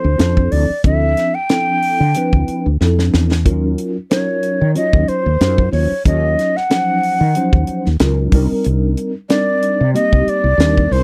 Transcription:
0.00 0.53 C5 medium
0.04 0.17 D2 medium
0.18 0.48 F2 medium
0.18 0.69 F3 medium
0.18 0.69 C4 medium
0.18 0.69 D4 medium
0.18 0.69 E4 medium
0.18 0.70 A4 medium
0.18 snare medium
0.18 closed hi-hat medium
0.37 kick medium
0.52 0.68 D2 medium
0.52 0.84 D5 medium
0.52 open hi-hat medium
0.84 1.13 D2 medium
0.84 1.35 F3 medium
0.84 1.35 C4 medium
0.84 1.35 D4 medium
0.84 1.35 E4 medium
0.84 1.35 A4 medium
0.84 1.36 E5 medium
0.84 kick medium
0.84 closed hi-hat medium
1.17 snare soft
1.17 closed hi-hat medium
1.35 2.65 G5 medium
1.49 2.00 F3 medium
1.49 2.00 C4 medium
1.49 2.01 D4 medium
1.49 2.01 E4 medium
1.49 2.01 A4 medium
1.49 snare medium
1.49 closed hi-hat medium
1.82 open hi-hat medium
2.00 2.13 D3 medium
2.14 2.66 F3 medium
2.14 2.66 C4 medium
2.14 2.66 D4 medium
2.14 2.66 E4 medium
2.14 2.66 B4 medium
2.14 closed hi-hat medium
2.33 2.46 D2 medium
2.33 kick medium
2.48 muted fretless electric bass stroke soft
2.48 closed hi-hat medium
2.66 2.79 D2 medium
2.81 3.10 F2 medium
2.81 3.31 F3 medium
2.81 3.31 C4 medium
2.81 3.31 D4 medium
2.81 3.31 E4 medium
2.81 3.31 A4 medium
2.81 snare medium
2.99 snare medium
3.14 3.46 E2 medium
3.14 snare medium
3.32 snare medium
3.45 3.74 D#2 medium
3.45 3.96 F#3 medium
3.45 3.96 C#4 medium
3.45 3.96 D#4 medium
3.45 3.96 F4 medium
3.45 3.96 A#4 medium
3.45 kick medium
3.45 closed hi-hat medium
3.78 closed hi-hat medium
4.11 4.61 F#3 medium
4.11 4.61 C#4 medium
4.11 4.61 D#4 medium
4.11 4.61 F4 medium
4.11 4.61 A#4 medium
4.11 4.72 C#5 medium
4.11 snare medium
4.11 closed hi-hat medium
4.43 closed hi-hat soft
4.61 4.74 D#3 medium
4.75 5.26 F#3 medium
4.75 5.26 C#4 medium
4.75 5.26 D#4 medium
4.75 5.26 F4 medium
4.75 5.26 C#5 medium
4.75 5.10 D#5 medium
4.75 closed hi-hat medium
4.93 5.06 D#2 medium
4.93 kick medium
5.08 5.72 C5 medium
5.08 muted fretless electric bass stroke soft
5.08 closed hi-hat soft
5.26 5.39 D#2 medium
5.41 5.69 F#2 medium
5.41 5.91 F#3 medium
5.41 5.91 C#4 medium
5.41 5.91 D#4 medium
5.41 5.92 F4 medium
5.41 5.92 C5 medium
5.41 snare medium
5.41 closed hi-hat medium
5.58 kick medium
5.72 5.88 D#2 medium
5.72 6.03 C#5 medium
5.72 open hi-hat medium
5.91 muted fretless electric bass stroke soft
6.05 6.34 D#2 medium
6.05 6.56 F#3 medium
6.05 6.56 C#4 medium
6.05 6.56 D#4 medium
6.05 6.56 F4 medium
6.05 6.56 C#5 medium
6.05 6.58 D#5 medium
6.05 kick loud
6.05 closed hi-hat medium
6.39 snare soft
6.39 closed hi-hat medium
6.56 7.86 F#5 medium
6.56 snare soft
6.70 7.21 F3 medium
6.70 7.21 F#3 medium
6.70 7.21 C#4 medium
6.70 7.21 D#4 medium
6.70 7.21 C5 medium
6.70 snare medium
6.70 closed hi-hat medium
7.03 open hi-hat medium
7.21 7.34 D#3 medium
7.35 7.87 F3 medium
7.35 7.86 F#3 medium
7.35 7.86 C#4 medium
7.35 7.86 D#4 medium
7.35 7.87 C5 medium
7.35 closed hi-hat medium
7.53 7.66 D#2 medium
7.53 kick medium
7.67 muted fretless electric bass stroke soft
7.67 closed hi-hat medium
7.86 7.99 D#2 medium
7.86 snare soft
7.99 8.29 C#2 medium
7.99 8.33 F#3 medium
7.99 8.33 C#4 medium
7.99 8.33 D#4 medium
7.99 8.34 F4 medium
7.99 8.34 A#4 medium
7.99 snare loud
7.99 closed hi-hat medium
8.32 8.48 C2 medium
8.32 9.12 G3 medium
8.32 9.12 C4 medium
8.32 9.13 D4 medium
8.32 9.13 D#4 medium
8.32 9.13 A#4 medium
8.32 kick medium
8.32 open hi-hat medium
8.52 muted fretless electric bass stroke soft
8.64 8.94 C2 medium
8.64 closed hi-hat medium
8.97 closed hi-hat medium
9.29 9.80 G3 medium
9.29 9.80 C4 medium
9.29 9.80 D4 medium
9.29 9.81 D#4 medium
9.29 9.81 A#4 medium
9.29 9.91 D5 medium
9.29 snare medium
9.29 closed hi-hat medium
9.62 closed hi-hat medium
9.80 9.93 C3 medium
9.94 10.45 G3 medium
9.94 10.45 A#3 medium
9.94 10.45 C4 medium
9.94 10.45 D#4 medium
9.94 10.45 G4 medium
9.94 10.30 D#5 loud
9.94 closed hi-hat medium
10.13 10.26 C2 medium
10.13 kick medium
10.27 10.94 D5 loud
10.27 muted fretless electric bass stroke soft
10.27 closed hi-hat medium
10.44 10.57 C2 medium
10.58 10.87 D#2 medium
10.58 11.03 G3 medium
10.58 11.03 C4 medium
10.58 11.03 D4 medium
10.58 11.03 D#4 medium
10.58 11.03 A#4 medium
10.58 snare loud
10.58 closed hi-hat medium
10.78 kick medium
10.91 11.03 C2 medium
10.91 11.03 C5 medium
10.91 open hi-hat medium

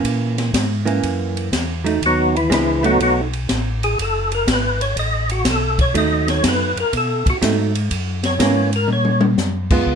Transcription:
0.00 0.51 A#2 medium
0.00 0.50 E3 medium
0.00 0.50 A#3 medium
0.00 0.51 C#4 medium
0.04 kick soft
0.04 ride medium
0.38 snare soft
0.38 ride soft
0.53 1.01 G#2 medium
0.53 kick soft
0.53 snare medium
0.53 hi-hat pedal medium
0.53 ride medium
0.85 1.48 E3 medium
0.85 1.48 A#3 medium
0.85 1.49 C#4 medium
0.85 ride soft
1.03 1.50 F#2 medium
1.03 kick soft
1.03 ride medium
1.37 ride soft
1.52 2.00 E2 medium
1.52 kick soft
1.52 snare medium
1.52 hi-hat pedal medium
1.52 ride medium
1.84 1.99 F#3 medium
1.84 2.00 A3 medium
1.84 2.00 D#4 medium
1.84 ride soft
2.01 2.49 D#2 medium
2.01 kick soft
2.01 ride medium
2.06 2.36 F#3 medium
2.06 2.36 B3 medium
2.06 2.36 D#4 medium
2.06 2.36 F#4 medium
2.36 2.51 E3 medium
2.36 2.51 E4 medium
2.36 ride soft
2.50 2.98 C#2 medium
2.50 2.84 E3 medium
2.50 2.80 F3 medium
2.50 2.80 G#3 medium
2.50 2.80 D4 medium
2.50 2.84 E4 medium
2.50 kick soft
2.50 snare medium
2.50 hi-hat pedal medium
2.50 ride medium
2.83 3.26 F#3 medium
2.83 3.00 F#3 medium
2.83 3.26 A3 medium
2.83 3.00 B3 medium
2.83 3.26 D#4 medium
2.83 3.00 D#4 medium
2.83 3.00 F#4 medium
2.83 ride soft
3.00 3.47 B1 medium
3.00 3.21 F#3 medium
3.00 3.21 B3 medium
3.00 3.22 D#4 medium
3.00 3.21 F#4 medium
3.00 kick soft
3.00 ride medium
3.33 ride soft
3.49 3.96 A1 medium
3.49 kick soft
3.49 snare medium
3.49 hi-hat pedal medium
3.49 ride medium
3.83 3.98 G#4 medium
3.83 ride soft
3.98 4.46 F#1 medium
3.98 4.32 A4 medium
3.98 kick soft
3.98 ride medium
4.32 4.48 A#4 medium
4.32 ride soft
4.47 4.95 G#1 medium
4.47 kick soft
4.47 snare medium
4.47 hi-hat pedal medium
4.47 ride medium
4.51 4.81 B4 medium
4.81 4.97 C#5 medium
4.81 ride soft
4.96 5.44 A1 medium
4.96 5.30 D#5 loud
4.96 kick soft
4.96 ride medium
5.29 5.46 F#4 medium
5.29 ride medium
5.45 5.93 B1 medium
5.45 kick soft
5.45 snare medium
5.45 hi-hat pedal medium
5.45 ride medium
5.50 5.80 A4 medium
5.79 5.95 C#5 loud
5.79 kick medium
5.79 ride soft
5.94 6.42 D#2 medium
5.94 6.70 F#3 medium
5.94 6.70 A3 medium
5.94 6.71 D#4 medium
5.94 6.28 D#5 medium
5.94 kick soft
5.94 ride medium
6.28 6.44 C#5 medium
6.28 snare soft
6.28 ride medium
6.44 6.74 F#2 medium
6.44 kick soft
6.44 snare medium
6.44 hi-hat pedal medium
6.44 ride medium
6.48 6.78 B4 medium
6.76 6.84 F#2 soft
6.76 6.94 A#4 medium
6.76 ride soft
6.93 7.24 B2 medium
6.93 kick soft
6.93 ride medium
6.97 7.27 A4 medium
7.26 7.34 B2 soft
7.26 7.38 F#4 medium
7.26 kick medium
7.26 ride soft
7.42 7.89 G#2 medium
7.42 7.71 F#3 medium
7.42 7.72 A3 medium
7.42 7.72 D#4 medium
7.42 kick soft
7.42 snare medium
7.42 hi-hat pedal medium
7.42 ride medium
7.75 ride soft
7.91 8.38 F#2 medium
7.91 kick soft
7.91 ride medium
8.23 8.70 C#5 medium
8.23 snare medium
8.23 ride soft
8.39 8.87 G#2 medium
8.39 8.70 E3 medium
8.39 8.70 A#3 medium
8.39 8.70 C#4 medium
8.39 kick soft
8.39 snare medium
8.39 hi-hat pedal medium
8.39 ride medium
8.73 8.90 A#4 medium
8.73 ride soft
8.88 9.36 A#2 medium
8.88 high tom soft
8.93 9.23 C#5 medium
9.05 high tom medium
9.21 high tom medium
9.38 9.85 F#2 medium
9.38 snare medium
9.38 hi-hat pedal medium
9.70 9.95 G#3 medium
9.70 9.95 B3 medium
9.70 9.95 F4 medium
9.70 kick medium
9.70 crash medium
9.86 9.95 C#2 medium
9.86 kick soft

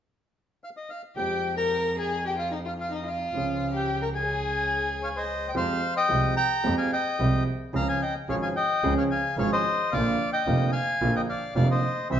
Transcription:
0.64 0.70 F5 medium
0.77 0.90 D#5 soft
0.90 1.02 F5 soft
1.16 3.25 F2 medium
1.16 3.25 F2 soft
1.16 3.25 F3 soft
1.16 3.24 G#3 soft
1.16 3.25 C4 soft
1.16 1.55 G4 medium
1.16 3.26 G4 soft
1.16 1.55 G5 medium
1.57 1.95 A#4 medium
1.57 1.96 A#5 medium
1.99 2.24 G#4 medium
1.99 2.24 G#5 medium
2.26 2.37 G4 soft
2.26 2.40 G5 medium
2.38 2.51 F4 soft
2.38 2.53 F5 soft
2.52 2.58 D#4 soft
2.52 2.59 D#5 soft
2.65 2.72 F4 soft
2.65 2.74 F5 medium
2.79 2.91 F4 soft
2.79 2.93 F5 medium
2.92 3.05 D#4 soft
2.92 3.08 D#5 medium
3.06 3.71 F4 medium
3.06 3.78 F5 medium
3.33 5.44 C#2 soft
3.33 5.45 C#2 medium
3.33 5.44 C#3 soft
3.33 5.43 F3 soft
3.33 5.44 G#3 soft
3.33 5.44 C#4 soft
3.33 5.45 G#4 soft
3.74 4.00 G4 soft
3.74 4.04 G5 medium
4.02 4.09 A#4 soft
4.02 4.09 A#5 medium
4.15 5.23 G#4 medium
4.15 5.23 G#5 medium
5.03 5.08 C#5 soft
5.03 5.09 F5 medium
5.16 5.47 C5 soft
5.16 5.51 D#5 medium
5.48 5.55 G5 medium
5.54 5.78 F2 medium
5.54 5.78 F3 medium
5.54 5.78 G#3 soft
5.54 5.78 C4 soft
5.54 5.78 G4 medium
5.54 5.94 C5 medium
5.54 5.95 F5 medium
5.97 6.35 D#5 medium
5.97 6.35 G5 medium
6.09 6.33 C2 medium
6.09 6.34 C2 medium
6.09 6.33 C3 medium
6.09 6.32 F3 medium
6.09 6.32 G#3 soft
6.09 6.33 C4 soft
6.09 6.33 G4 medium
6.37 6.76 G5 medium
6.37 6.75 A#5 medium
6.64 6.87 F2 medium
6.64 6.88 F2 medium
6.64 6.88 F3 medium
6.64 6.87 G#3 medium
6.64 6.88 C4 medium
6.64 6.88 G4 medium
6.77 6.91 F5 soft
6.77 6.91 G#5 medium
6.93 7.44 D#5 soft
6.93 7.43 G5 medium
7.19 7.43 C2 medium
7.19 7.43 C3 medium
7.19 7.42 F3 medium
7.19 7.42 G#3 medium
7.19 7.43 C4 medium
7.19 7.43 G4 medium
7.73 7.97 C#2 medium
7.73 7.97 C#3 medium
7.73 7.97 F3 medium
7.73 7.97 G#3 medium
7.73 7.97 C#4 medium
7.73 7.97 G#4 medium
7.73 7.88 F5 medium
7.73 7.88 A#5 medium
7.89 8.01 F5 medium
7.89 8.01 G#5 medium
8.02 8.15 D#5 medium
8.02 8.14 G5 medium
8.28 8.52 G#1 medium
8.28 8.52 G#2 medium
8.28 8.51 F3 medium
8.28 8.52 G#3 medium
8.28 8.52 C#4 medium
8.28 8.52 G#4 medium
8.28 8.36 C#5 medium
8.28 8.36 F5 medium
8.42 8.49 F5 medium
8.42 8.48 G#5 medium
8.56 8.94 D#5 medium
8.56 8.94 G5 medium
8.83 9.06 C#2 medium
8.83 9.06 C#3 medium
8.83 9.06 F3 medium
8.83 9.06 G#3 medium
8.83 9.06 C#4 medium
8.83 9.06 G#4 medium
8.98 9.04 C#5 medium
8.98 9.04 F5 medium
9.11 9.36 F5 medium
9.11 9.36 G#5 medium
9.37 9.60 G#1 medium
9.37 9.61 G#1 medium
9.37 9.61 G#2 medium
9.37 9.60 F3 medium
9.37 9.60 G#3 medium
9.37 9.61 C#4 soft
9.37 9.61 G#4 medium
9.37 9.51 C#5 medium
9.37 9.50 F5 medium
9.52 9.90 C5 medium
9.52 9.94 D#5 medium
9.92 10.15 A#1 medium
9.92 10.15 A#2 medium
9.92 10.15 D3 medium
9.92 10.15 F3 soft
9.92 10.15 A#3 medium
9.92 10.15 F4 medium
9.92 10.30 D5 medium
9.92 10.30 F5 medium
10.33 10.71 D#5 medium
10.33 10.70 G5 medium
10.46 10.69 F1 medium
10.46 10.69 F2 medium
10.46 10.69 D3 medium
10.46 10.69 F3 soft
10.46 10.69 A#3 medium
10.46 10.69 F4 medium
10.72 11.11 F5 medium
10.72 11.15 G#5 medium
11.01 11.24 A#1 medium
11.01 11.24 A#2 medium
11.01 11.24 D3 medium
11.01 11.24 F3 medium
11.01 11.24 A#3 medium
11.01 11.24 F4 medium
11.16 11.22 D#5 soft
11.16 11.21 G5 medium
11.29 11.54 D5 soft
11.29 11.54 F5 medium
11.55 11.78 F1 medium
11.55 11.79 F1 medium
11.55 11.78 F2 medium
11.55 11.78 D3 medium
11.55 11.78 F3 medium
11.55 11.78 A#3 soft
11.55 11.78 F4 medium
11.55 11.68 D5 medium
11.55 11.68 F5 medium
11.71 12.08 C5 medium
11.71 12.08 D#5 medium
12.10 12.20 C2 medium
12.10 12.20 C3 medium
12.10 12.20 E3 medium
12.10 12.20 G3 soft
12.10 12.20 C4 medium
12.10 12.20 G4 medium
12.10 12.20 C5 medium
12.10 12.20 E5 medium

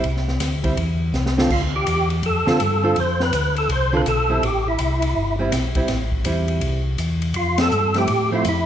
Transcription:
0.04 0.40 C2 medium
0.04 ride soft
0.16 snare soft
0.28 snare soft
0.40 0.76 D2 medium
0.40 snare soft
0.40 hi-hat pedal medium
0.40 ride medium
0.63 0.76 G3 medium
0.63 0.76 C4 medium
0.63 0.76 E4 medium
0.63 kick soft
0.63 ride soft
0.77 1.13 E2 medium
0.77 ride soft
1.13 1.49 C2 medium
1.13 snare soft
1.13 hi-hat pedal soft
1.26 snare medium
1.38 1.49 D3 medium
1.38 1.50 C4 medium
1.38 1.50 F4 medium
1.38 1.50 A4 medium
1.38 snare medium
1.50 1.86 D2 medium
1.50 1.62 F4 medium
1.50 kick medium
1.50 crash medium
1.76 2.09 G4 medium
1.86 2.22 E2 medium
1.86 hi-hat pedal medium
1.86 ride medium
2.10 ride soft
2.22 2.45 F2 medium
2.22 3.00 A4 medium
2.22 ride medium
2.47 2.53 F2 soft
2.47 2.58 D3 medium
2.47 2.59 C4 medium
2.47 2.59 F4 medium
2.47 2.59 A4 medium
2.47 snare medium
2.60 2.96 G2 medium
2.60 hi-hat pedal soft
2.60 ride medium
2.83 2.95 D3 medium
2.83 2.95 C4 medium
2.83 2.96 F4 medium
2.83 2.96 A4 medium
2.96 3.32 F2 medium
2.96 ride medium
3.00 3.22 C5 medium
3.20 3.55 B4 medium
3.20 snare soft
3.32 3.68 D2 medium
3.32 hi-hat pedal medium
3.32 ride medium
3.56 3.71 A4 medium
3.56 ride soft
3.69 4.05 C2 medium
3.69 3.95 C5 medium
3.69 ride medium
3.93 4.04 D3 medium
3.93 4.05 C4 medium
3.93 4.05 F4 medium
3.93 4.05 A4 medium
3.97 4.02 B4 medium
4.06 4.41 B1 medium
4.06 4.45 A4 medium
4.06 hi-hat pedal medium
4.06 ride medium
4.29 4.41 G3 medium
4.29 4.41 C4 medium
4.29 4.42 E4 medium
4.42 4.78 A1 medium
4.42 4.68 G4 medium
4.42 ride medium
4.68 5.36 E4 medium
4.79 5.14 C2 medium
4.79 hi-hat pedal soft
4.79 ride medium
5.02 ride medium
5.16 5.51 G1 medium
5.39 5.51 G3 medium
5.39 5.51 C4 medium
5.39 5.52 E4 medium
5.52 5.74 B1 medium
5.52 snare soft
5.52 hi-hat pedal medium
5.52 ride medium
5.75 5.82 B1 soft
5.75 5.87 G3 medium
5.75 5.88 C4 medium
5.75 5.88 E4 medium
5.75 kick medium
5.75 ride soft
5.88 6.24 A1 medium
5.88 snare soft
5.88 ride medium
6.12 kick soft
6.25 6.61 E2 medium
6.25 6.80 G3 soft
6.25 6.81 C4 soft
6.25 6.81 E4 medium
6.25 hi-hat pedal soft
6.25 ride medium
6.48 ride soft
6.61 6.97 C2 medium
6.61 ride medium
6.98 7.34 E2 medium
6.98 hi-hat pedal medium
6.98 ride medium
7.22 ride soft
7.34 7.70 F2 medium
7.34 7.60 F4 medium
7.34 ride medium
7.58 7.97 A4 loud
7.58 snare medium
7.58 ride medium
7.71 8.07 G2 medium
7.71 hi-hat pedal soft
7.94 8.06 F3 soft
7.94 8.07 A3 medium
7.94 8.07 C4 soft
7.94 8.07 E4 soft
7.94 snare soft
7.94 ride soft
7.98 8.31 G4 loud
8.07 8.44 A2 medium
8.07 ride medium
8.31 8.43 F3 medium
8.31 8.43 A3 medium
8.31 8.43 C4 medium
8.31 8.44 E4 medium
8.36 8.46 F4 medium
8.45 8.66 F2 medium
8.45 hi-hat pedal medium
8.45 ride medium
8.49 8.66 E4 medium

